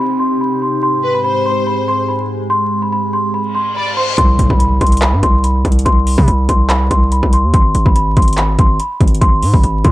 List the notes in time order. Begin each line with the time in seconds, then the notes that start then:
Already playing: C3 C4 D#4 G4, downlifter
0.00 B5
0.19 C6
0.41 B5
0.62 C6
0.82 G#2 G#3 C6
1.03 B4
1.14 B5
1.24 C5 B5
1.45 C6
1.67 B5
1.88 C6
2.09 B5
2.50 C6
2.82 B5
2.92 B5
3.13 C6
3.34 B5, reverse cymbal
3.55 C6
3.76 D5 B5
3.97 C5 C6
4.18 C2 C6, kick, closed hi-hat, impact
4.39 B1, closed hi-hat
4.50 C2 B5, kick
4.59 B5, closed hi-hat
4.81 C2 C6, kick, closed hi-hat
4.87 closed hi-hat
4.92 closed hi-hat
4.97 closed hi-hat
5.01 B5, clap, closed hi-hat
5.13 G2
5.23 C2 C6, kick, closed hi-hat
5.44 B5, closed hi-hat
5.65 C2, kick, closed hi-hat
5.72 closed hi-hat
5.79 closed hi-hat
5.85 C2 C6, kick, closed hi-hat
6.07 open hi-hat
6.18 C3 B5, kick
6.27 C2 B5, closed hi-hat
6.49 C2 C6, kick, closed hi-hat
6.70 B5, clap, closed hi-hat
6.90 C2 C6, kick, closed hi-hat
7.12 B5, closed hi-hat
7.23 C2, kick
7.33 C6, closed hi-hat
7.44 D#2
7.54 G#1 C6, kick, closed hi-hat
7.75 G#1, closed hi-hat
7.86 G#1 B5, kick
7.96 B5, closed hi-hat
8.17 G#1 C6, kick, closed hi-hat
8.22 closed hi-hat
8.28 closed hi-hat
8.33 closed hi-hat
8.38 B5, clap, closed hi-hat
8.59 G#1 C6, kick, closed hi-hat
8.80 B5, closed hi-hat
9.01 G#1, kick, closed hi-hat
9.08 closed hi-hat
9.15 closed hi-hat
9.21 G#1 C6, kick, closed hi-hat
9.43 G#2, open hi-hat
9.54 G#1 B5, kick
9.64 G#1 B5, closed hi-hat
9.84 G#2 C6, kick, closed hi-hat